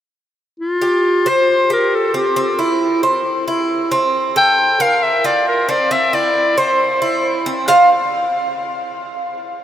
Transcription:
0.60 1.30 F4 medium
0.82 1.24 G4 medium
1.26 1.69 C5 medium
1.26 1.71 C5 loud
1.70 2.13 G4 medium
1.70 1.96 A#4 medium
1.95 2.16 A4 medium
2.14 2.35 C4 medium
2.14 2.57 G4 medium
2.36 2.58 C4 medium
2.59 3.02 E4 medium
3.03 3.46 C5 medium
3.48 3.90 E4 medium
3.92 4.34 C4 medium
4.36 4.79 A4 medium
4.36 4.83 G5 loud
4.80 5.23 A#4 medium
4.80 5.04 F5 loud
5.03 5.27 E5 loud
5.24 5.67 F4 medium
5.24 5.47 D5 medium
5.48 5.72 A#4 medium
5.69 5.90 C4 medium
5.69 5.93 D5 medium
5.91 6.12 C4 medium
5.91 6.16 E5 medium
6.13 6.56 E4 medium
6.13 6.60 D5 medium
6.58 7.00 C5 medium
6.58 7.46 C5 medium
7.02 7.45 E4 medium
7.46 7.67 C4 medium
7.68 7.88 F4 medium
7.68 7.89 C5 medium
7.68 7.89 F5 medium

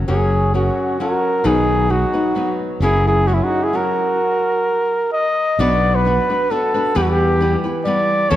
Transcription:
0.07 0.69 F#1 medium
0.07 0.54 F#3 medium
0.07 0.51 C#4 medium
0.07 0.53 C#4 medium
0.07 0.55 F#4 medium
0.07 0.52 G#4 medium
0.07 0.54 A#4 medium
0.54 0.99 F#3 soft
0.54 0.97 C#4 medium
0.54 0.99 C#4 medium
0.54 1.00 F#4 medium
0.54 0.98 F#4 medium
0.54 1.00 A#4 medium
1.00 1.44 F#3 medium
1.00 1.44 C#4 medium
1.00 1.47 F#4 medium
1.00 1.45 F#4 medium
1.00 1.45 A#4 medium
1.00 1.48 A#4 medium
1.44 2.04 B1 medium
1.44 1.90 B2 medium
1.44 1.90 D#3 medium
1.44 1.88 F#3 medium
1.44 1.89 B3 medium
1.44 1.92 D#4 medium
1.44 1.89 D#4 medium
1.44 1.92 G#4 loud
1.44 1.89 B4 medium
1.89 2.13 F#3 soft
1.89 2.14 B3 soft
1.89 2.13 D#4 medium
1.89 2.60 D#4 medium
1.89 2.60 F#4 medium
1.89 2.12 B4 soft
2.13 2.34 F#3 soft
2.13 2.35 B3 soft
2.13 2.35 D#4 soft
2.13 2.35 B4 soft
2.35 2.81 F#3 medium
2.35 2.81 B3 medium
2.35 2.81 D#4 medium
2.35 2.82 B4 medium
2.80 3.40 F#1 loud
2.80 3.27 F#3 medium
2.80 3.27 C#4 medium
2.80 3.04 E4 medium
2.80 3.27 E4 medium
2.80 3.04 G#4 medium
2.80 3.28 A#4 medium
3.06 3.29 E4 medium
3.06 3.29 G#4 medium
3.27 3.73 F#3 soft
3.27 3.34 C#4 medium
3.27 3.72 C#4 medium
3.27 3.73 E4 soft
3.27 3.35 F#4 medium
3.27 3.74 A#4 medium
3.34 3.45 C#4 medium
3.34 3.45 E4 medium
3.44 3.66 D#4 medium
3.44 3.65 F#4 medium
3.63 3.76 E4 medium
3.63 3.77 G#4 medium
3.73 4.70 F#3 soft
3.73 4.19 C#4 medium
3.73 4.20 E4 medium
3.73 5.13 F#4 medium
3.73 4.20 A#4 medium
3.73 5.12 A#4 medium
5.12 5.62 D#5 medium
5.59 6.18 B1 medium
5.59 6.05 B2 medium
5.59 6.05 F#3 medium
5.59 6.05 B3 medium
5.59 6.05 D4 medium
5.59 6.05 F#4 medium
5.59 6.07 B4 medium
5.59 5.97 D5 medium
5.95 6.53 B4 medium
6.05 6.29 B3 medium
6.05 6.29 D4 soft
6.05 6.29 F#4 medium
6.05 6.28 B4 medium
6.30 6.49 B3 soft
6.30 6.50 D4 soft
6.30 6.50 F#4 soft
6.30 6.51 B4 soft
6.50 6.74 B3 medium
6.50 6.74 D4 medium
6.50 6.74 F#4 medium
6.50 6.98 A4 medium
6.50 6.73 B4 medium
6.74 6.94 B3 soft
6.74 6.95 D4 soft
6.74 6.96 F#4 soft
6.74 6.95 B4 medium
6.95 7.55 E2 loud
6.95 8.30 E3 medium
6.95 7.39 G3 medium
6.95 7.39 B3 medium
6.95 7.41 E4 medium
6.95 7.04 G4 medium
6.95 7.41 B4 loud
7.02 7.12 F#4 medium
7.10 7.65 G4 medium
7.41 7.64 G3 medium
7.41 7.64 B3 medium
7.41 7.64 E4 medium
7.41 7.62 B4 medium
7.64 7.85 B3 soft
7.64 7.86 E4 soft
7.64 7.86 B4 soft
7.85 8.30 G3 medium
7.85 8.30 B3 medium
7.85 8.30 E4 medium
7.85 8.31 B4 medium
7.85 8.31 D5 medium
8.30 8.36 E2 loud
8.30 8.36 E3 medium
8.30 8.36 A3 medium
8.30 8.36 C#4 loud
8.30 8.36 E4 loud
8.30 8.36 A4 medium
8.30 8.36 C#5 loud

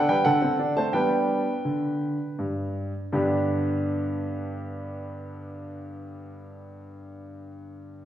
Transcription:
0.09 0.25 G3 medium
0.09 0.25 B4 medium
0.09 0.25 G5 medium
0.25 0.42 D3 medium
0.25 0.73 A4 medium
0.25 0.72 F#5 medium
0.42 0.60 C4 medium
0.59 0.77 D4 medium
0.76 0.94 A3 soft
0.76 0.94 C5 medium
0.76 0.94 A5 medium
0.93 1.44 G3 medium
0.93 1.51 B3 soft
0.93 1.51 D4 soft
0.93 2.72 B4 medium
0.93 2.03 G5 medium
1.65 2.16 D3 medium
2.39 2.90 G2 medium
3.12 6.34 G2 medium
3.12 6.34 D3 medium
3.12 6.35 B3 medium
3.12 6.35 D4 medium
3.12 6.35 G4 medium
3.12 6.36 B4 medium

